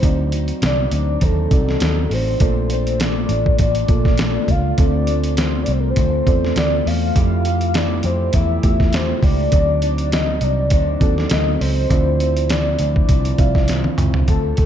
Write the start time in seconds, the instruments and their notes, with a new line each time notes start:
Already playing: soft synth lead C5
0.02 picked electric bass D2, clean electric guitar D3 F#3 C4 D#4, reed electric piano C4 D#4 F#4 D5, kick, closed hi-hat
0.31 clean electric guitar F#3 C4 D#4, closed hi-hat
0.48 closed hi-hat
0.61 picked electric bass C2, clean electric guitar D3 F#3 C4 D#4, snare, closed hi-hat
0.65 soft synth lead D5
0.91 picked electric bass D2, clean electric guitar F#3 C4 D#4, closed hi-hat
0.95 soft synth lead D5
1.20 picked electric bass D#2, clean electric guitar D3 F#3 C4 D#4, soft synth lead A4, kick, closed hi-hat
1.50 picked electric bass C2, clean electric guitar F#3 C4 D#4, reed electric piano C4 D#4 F#4 D5, kick, closed hi-hat
1.69 snare
1.80 picked electric bass D#2, clean electric guitar D3 F#3 C4 D#4, snare, closed hi-hat
2.09 picked electric bass A1, clean electric guitar F#3 C4 D#4, open hi-hat
2.13 soft synth lead C5
2.39 picked electric bass A#1, clean electric guitar A#2 A3 D4 F4, reed electric piano A#3 F4 A4 D5, soft synth lead C5, kick, closed hi-hat
2.70 clean electric guitar A3 D4 F4, soft synth lead C5, closed hi-hat
2.87 closed hi-hat
2.98 clean electric guitar A#2 A3 D4 F4, soft synth lead D5, snare, closed hi-hat
3.29 picked electric bass A1, clean electric guitar A3 D4 F4, closed hi-hat
3.46 kick
3.58 picked electric bass A1, clean electric guitar A#2 A3 D4 F4, soft synth lead D5, kick, closed hi-hat
3.75 closed hi-hat
3.88 picked electric bass A#1, clean electric guitar A3 D4 F4, reed electric piano A#3 F4 A4 D5, kick, closed hi-hat
4.05 kick, snare
4.17 clean electric guitar A#2 A3 D4 F4, snare, closed hi-hat
4.48 picked electric bass C#2, clean electric guitar A3 D4 F4, soft synth lead F5, kick, closed hi-hat
4.78 picked electric bass D2, clean electric guitar D3 A3 C4 F4, reed electric piano C4 F4 A4 D5, soft synth lead D5, kick, closed hi-hat
5.07 clean electric guitar C4 F4, closed hi-hat
5.11 clean electric guitar A3
5.24 closed hi-hat
5.37 clean electric guitar D3 A3 C4 F4, soft synth lead C5, snare, closed hi-hat
5.63 clean electric guitar F4, soft synth lead D5, closed hi-hat
5.68 picked electric bass C2, clean electric guitar A3 C4, soft synth lead C5
5.80 soft synth lead A#4
5.90 soft synth lead C5
5.96 picked electric bass D2, clean electric guitar D3 A3 C4 F4, soft synth lead C5, kick, closed hi-hat
6.26 picked electric bass E2, clean electric guitar A3 C4 F4, reed electric piano C4 F4 A4 D5, kick, closed hi-hat
6.45 snare
6.56 picked electric bass D2, clean electric guitar D3 A3 C4, soft synth lead D5, snare, closed hi-hat
6.60 clean electric guitar F4
6.85 picked electric bass E2, clean electric guitar A3 C4 F4, soft synth lead F5, open hi-hat
7.15 picked electric bass F2, clean electric guitar F3 A3 E4 G4, reed electric piano A3 F4 G4 F5, kick, closed hi-hat
7.45 clean electric guitar A3 E4 G4, closed hi-hat
7.61 closed hi-hat
7.74 clean electric guitar F3 A3 E4 G4, soft synth lead D5, snare, closed hi-hat
8.03 picked electric bass F2, clean electric guitar E4 G4, soft synth lead C5, closed hi-hat
8.08 clean electric guitar A3
8.33 picked electric bass E2, clean electric guitar F3 A3 E4 G4, soft synth lead E5, kick, closed hi-hat
8.63 picked electric bass E2, reed electric piano A3 F4 G4 E5, clean electric guitar A3 E4 G4, kick, closed hi-hat
8.80 kick, snare
8.93 clean electric guitar F3 A3 E4 G4, soft synth lead C5, snare, closed hi-hat
9.22 picked electric bass C#2, clean electric guitar A3 E4 G4, soft synth lead D5, kick, open hi-hat
9.51 picked electric bass D2, clean electric guitar D3 F#3 C4 D#4, reed electric piano C4 D#4 F#4 D5, soft synth lead D5, kick, closed hi-hat
9.81 clean electric guitar F#3 C4 D#4, soft synth lead D5, closed hi-hat
9.98 closed hi-hat
10.11 clean electric guitar D3 F#3 C4 D#4, soft synth lead D#5, snare, closed hi-hat
10.41 picked electric bass C2, clean electric guitar F#3 C4 D#4, soft synth lead D5, closed hi-hat
10.70 picked electric bass D2, clean electric guitar D3 F#3 C4 D#4, soft synth lead D5, kick, closed hi-hat
11.00 picked electric bass D#2, clean electric guitar F#3 C4 D#4, reed electric piano C4 D#4 F#4 A4, kick, closed hi-hat
11.18 snare
11.29 picked electric bass D2, clean electric guitar D3 F#3 C4 D#4, soft synth lead D#5, snare, closed hi-hat
11.59 picked electric bass C#2, clean electric guitar F#3 C4 D#4, soft synth lead C5, open hi-hat
11.90 picked electric bass D2, clean electric guitar D3 F3 C4 E4, reed electric piano C4 E4 F4 D5, soft synth lead C5, kick, closed hi-hat
12.19 clean electric guitar F3 C4 E4, closed hi-hat
12.37 closed hi-hat
12.49 clean electric guitar D3 F3 C4 E4, soft synth lead D5, snare, closed hi-hat
12.79 picked electric bass D2, clean electric guitar F3 C4 E4, soft synth lead D5, closed hi-hat
12.96 kick
13.09 picked electric bass C2, clean electric guitar D3 F3 C4 E4, kick, closed hi-hat
13.25 closed hi-hat
13.38 picked electric bass C2, clean electric guitar F3 C4 E4, reed electric piano C4 F4 E5 F5, kick, closed hi-hat
13.55 kick, snare
13.68 clean electric guitar D3 F3 C4 E4, snare, closed hi-hat
13.84 high tom
13.97 picked electric bass C#2, clean electric guitar F3 C4 E4, closed hi-hat, mid tom
14.14 floor tom
14.27 picked electric bass D2, clean electric guitar D3 C4 F4 A4, soft synth lead A4, kick, closed hi-hat
14.56 picked electric bass D2, clean electric guitar C4 F4 A4, soft synth lead A4, kick, closed hi-hat